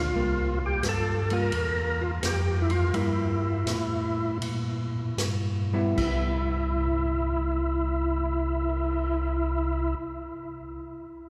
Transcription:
Already playing: D2 G#3 C4 D4 F4
0.14 C2 G3 A#3 F4
0.66 G4
0.83 G2, snare, hi-hat pedal, ride
0.89 A4
1.30 G3 A#3 F4 A#4, ride
1.52 E2, ride
2.01 F4
2.23 F2 G4, snare, hi-hat pedal, ride
2.62 E4
2.70 F4, ride
2.93 G2 G3 A#3 E4, ride
3.66 A2, snare, hi-hat pedal, ride
4.41 A#2, ride
5.17 G2, snare, hi-hat pedal, ride
5.73 G3 B3 E4
5.95 C2 G3 E4, kick, crash
6.02 B3
6.08 E4
6.52 cymbal swell

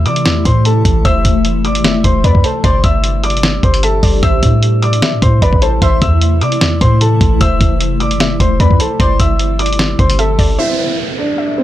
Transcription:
Already playing: C3 E3 A3 E4 E5
0.06 C3 D5 D6, closed hi-hat
0.16 closed hi-hat
0.26 E2, snare, closed hi-hat
0.45 A2 C5 C6, kick, closed hi-hat
0.65 A4 A5, closed hi-hat
0.85 A1, kick, closed hi-hat
1.05 F1 F3 C5 E5 E6, kick, closed hi-hat
1.25 F1, kick, closed hi-hat
1.45 closed hi-hat
1.65 G1 D5 D6, closed hi-hat
1.75 closed hi-hat
1.84 F1 E5, snare, closed hi-hat
2.04 F1 C5 C6, kick, closed hi-hat
2.24 F2 B4 D5 B5, kick, closed hi-hat
2.35 kick
2.44 A4 C5 A5, closed hi-hat
2.64 G1 G3 D4 G4 C5 D5 C6, kick, closed hi-hat
2.84 G1 E5 E6, kick, closed hi-hat
3.04 closed hi-hat
3.24 D5 D6, closed hi-hat
3.30 closed hi-hat
3.37 closed hi-hat
3.43 snare, closed hi-hat
3.63 G1 C5 C6, kick, closed hi-hat
3.74 closed hi-hat
3.83 A4 E5 A5, closed hi-hat
4.03 G1 D5, kick, open hi-hat
4.23 A1 C3 E3 A3 E4 C5 E5 E6, kick, closed hi-hat
4.43 A2, kick, closed hi-hat
4.63 closed hi-hat
4.82 D5 D6, closed hi-hat
4.93 closed hi-hat
5.02 E3 E5, snare, closed hi-hat
5.13 A2
5.22 A2 C5 C6, kick, closed hi-hat
5.42 A1 B4 D5 B5, kick, closed hi-hat
5.53 kick
5.62 A4 C5 A5, closed hi-hat
5.82 A1 C5 E5 C6, kick, closed hi-hat
6.02 E2 E5 E6, kick, closed hi-hat
6.21 closed hi-hat
6.41 C3 D5 D6, closed hi-hat
6.52 closed hi-hat
6.61 E2, snare, closed hi-hat
6.81 A2 C5 C6, kick, closed hi-hat
7.01 A4 A5, closed hi-hat
7.21 A1, kick, closed hi-hat
7.41 F1 F3 C5 E5 E6, kick, closed hi-hat
7.61 F1, kick, closed hi-hat
7.80 closed hi-hat
8.00 G1 D5 D6, closed hi-hat
8.11 closed hi-hat
8.20 F1 E5, snare, closed hi-hat
8.40 F1 C5 C6, kick, closed hi-hat
8.60 F2 B4 D5 B5, kick, closed hi-hat
8.71 kick
8.80 A4 C5 A5, closed hi-hat
9.00 G1 D3 G3 C4 G4 C5 D5 C6, kick, closed hi-hat
9.20 G1 E5 E6, kick, closed hi-hat
9.39 closed hi-hat
9.59 D5 D6, closed hi-hat
9.66 closed hi-hat
9.73 closed hi-hat
9.79 snare, closed hi-hat
9.99 G1 C5 C6, kick, closed hi-hat
10.10 closed hi-hat
10.19 A4 E5 A5, closed hi-hat
10.39 G1 D5, kick, open hi-hat
10.59 E4 C5 E5, downlifter
11.18 D4 D5
11.38 E5
11.58 C4 C5

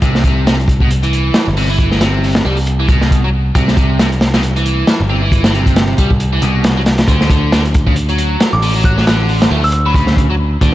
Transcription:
0.02 C2 C3, kick, closed hi-hat
0.15 snare
0.24 C3, kick, closed hi-hat
0.46 C3, snare, closed hi-hat
0.59 closed hi-hat
0.68 kick, closed hi-hat
0.80 B2, kick
0.91 closed hi-hat
1.03 E3, closed hi-hat
1.13 closed hi-hat
1.34 snare, closed hi-hat
1.48 G1
1.57 C3, open hi-hat
1.69 E3
1.78 kick, closed hi-hat
1.91 E3, snare
2.01 C3, snare, closed hi-hat
2.24 open hi-hat
2.35 snare, closed hi-hat
2.45 C2 G3
2.57 open hi-hat
2.67 closed hi-hat
2.80 E3
2.89 B2, kick, closed hi-hat
3.01 snare
3.11 kick, closed hi-hat
3.24 F#3
3.55 C2 C3, kick, closed hi-hat
3.68 snare
3.77 C3, kick, closed hi-hat
3.99 C3, snare, closed hi-hat
4.12 closed hi-hat
4.21 snare, closed hi-hat
4.34 B2, snare, closed hi-hat
4.43 closed hi-hat
4.56 E3, closed hi-hat
4.66 closed hi-hat
4.87 snare, closed hi-hat
5.00 G1
5.10 C3
5.22 E3
5.32 kick, closed hi-hat
5.44 E3, snare, closed hi-hat
5.54 C3, closed hi-hat
5.66 kick, closed hi-hat
5.76 snare, closed hi-hat
5.98 C2 G3, kick, closed hi-hat
6.11 kick
6.20 closed hi-hat
6.33 E3
6.42 C2 B2, closed hi-hat
6.64 snare, closed hi-hat
6.77 F#3
6.86 snare, closed hi-hat
6.98 snare, closed hi-hat
7.08 D2 D3, kick, closed hi-hat
7.21 snare
7.30 D3, kick, closed hi-hat
7.52 D3, snare, closed hi-hat
7.65 closed hi-hat
7.74 kick, closed hi-hat
7.87 C#3, kick
7.96 closed hi-hat
8.09 F#3, closed hi-hat
8.18 closed hi-hat
8.40 snare, closed hi-hat
8.53 A1 D6
8.62 D3, open hi-hat
8.75 F#3
8.84 F#6, kick, closed hi-hat
8.97 F#3, snare
9.07 D3, snare, closed hi-hat
9.29 open hi-hat
9.42 snare, closed hi-hat
9.51 D2 A3
9.64 E6, open hi-hat
9.72 E6, closed hi-hat
9.86 F#3 B5
9.94 C#3 B5, kick, closed hi-hat
10.07 snare
10.17 kick, closed hi-hat
10.30 F#3
10.61 D2 D3, kick, closed hi-hat

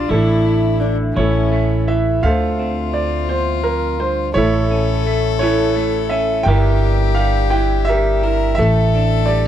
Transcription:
Already playing: D3 G3 F4
0.09 A1 A2 E4 A4
0.13 D4 E4
0.45 A3
0.80 D3 D4
1.16 A1 A2 C#4 E4 A4 C#5
1.52 A3
1.88 E3 E5
2.23 D2 A3 F4 A4 C5 F5
2.59 C4
2.94 D5
3.29 E2 C5
3.64 F2 A#4
3.99 G2 C5
4.34 A1 A2 A3 E4 A4 C#5
4.71 C#4
5.06 A3
5.39 E3 C#4 E4 A4 C#5
5.76 A3
6.09 C#4 E5
6.43 G1 G2 E3 G3 E4 G4 G5
6.47 G4 A#4 E5
7.15 G3 F5
7.50 E3 E4 G5
7.85 G3 E5
7.89 G4 A#4
8.23 E4 A#4
8.55 A1 A2 A4 E5
8.59 A3 A4
8.95 D4
9.26 G3 D5

